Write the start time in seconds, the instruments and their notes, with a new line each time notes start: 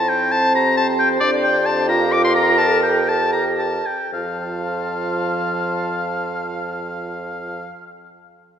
Already playing: bassoon F2, french horn C4, clarinet E4, flute C5, oboe A5
0.09 oboe G5
0.32 oboe A5
0.55 clarinet G4, oboe A#5
0.77 oboe A5
0.99 oboe G5
1.20 bassoon F2, french horn D4, oboe D5
1.43 oboe G5
1.66 oboe A5
1.89 french horn F4, flute A#4, oboe A#5
2.12 oboe D6
2.24 oboe C6
2.35 oboe A#5
2.58 french horn A4, oboe A5
2.82 oboe G5
3.09 oboe A5
3.32 french horn G4, clarinet G4, flute A#4, oboe A#5
3.58 oboe A5
3.86 oboe G5
4.13 bassoon F2, french horn F3, clarinet F4, oboe F5, flute A5